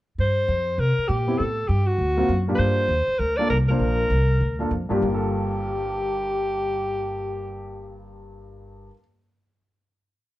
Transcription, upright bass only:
0.18 0.48 G2 medium
0.48 0.78 F2 medium
0.78 0.96 C3 medium
0.98 muted upright bass stroke soft
1.09 1.38 A#2 medium
1.40 1.68 A2 medium
1.69 1.98 G2 medium
1.98 2.28 D2 medium
2.29 2.58 F#2 medium
2.59 2.88 G2 medium
2.88 3.06 D#2 medium
3.08 muted upright bass stroke soft
3.19 3.49 D2 medium
3.50 3.79 C2 medium
3.79 4.09 A#1 medium
4.10 4.40 C2 medium
4.41 4.70 D2 medium
4.71 4.88 F2 medium
4.90 muted upright bass stroke soft
5.02 8.88 G1 medium

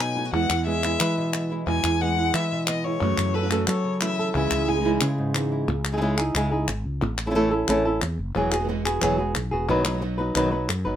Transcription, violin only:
0.00 0.33 G#5 loud
0.34 0.65 F#5 loud
0.66 1.46 E5 loud
1.67 2.03 G#5 medium
2.01 2.36 F#5 loud
2.35 2.67 E5 medium
2.68 2.86 D#5 medium
2.84 3.36 C#5 medium
3.34 3.51 B4 medium
3.68 3.99 C#5 medium
4.02 4.33 E5 medium
4.36 4.70 E5 medium
4.69 4.85 G#5 medium

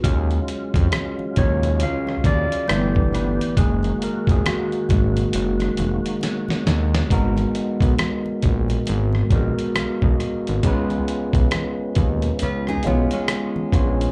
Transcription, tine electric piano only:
1.37 2.65 C#3 medium
1.37 2.65 F#3 medium
1.37 2.65 G#3 medium
1.37 2.65 F4 medium
1.37 1.83 C#5 loud
1.83 2.23 F5 loud
2.26 3.16 D5 loud
2.70 3.54 A3 medium
2.70 3.54 B3 soft
2.70 3.54 E4 medium
3.15 3.59 B4 medium
3.58 4.89 G#3 medium
3.58 4.90 A#3 medium
3.58 4.90 D#4 medium
3.58 4.03 G#4 medium
4.03 4.30 A#4 medium
4.31 4.47 G#4 medium
4.48 6.63 F#4 medium
4.90 5.30 G#3 medium
4.90 5.30 A#3 soft
4.90 5.30 D#4 medium
7.10 8.77 G#3 loud
7.10 8.77 B3 loud
7.10 8.77 D#4 medium
7.10 8.78 F#4 loud
7.10 8.78 A#4 loud
9.33 10.56 G#3 medium
9.33 10.57 B3 medium
9.33 10.57 D#4 medium
9.33 10.57 F#4 medium
9.33 9.77 A#4 medium
9.78 10.02 F5 medium
10.04 10.45 D#5 medium
10.49 10.66 B4 medium
10.65 12.30 G#3 loud
10.65 12.31 B3 loud
10.65 12.31 C#4 loud
10.65 10.73 D#4 medium
10.65 12.32 B4 loud
10.72 12.34 F4 loud
12.84 13.67 G#3 medium
12.84 13.67 B3 medium
12.84 13.68 C#4 medium
12.84 13.68 F4 medium
12.84 13.68 C#5 medium
13.73 14.12 G#3 medium
13.73 14.12 B3 medium
13.73 14.12 C#4 medium
13.73 14.12 F4 medium
13.73 14.12 C#5 medium

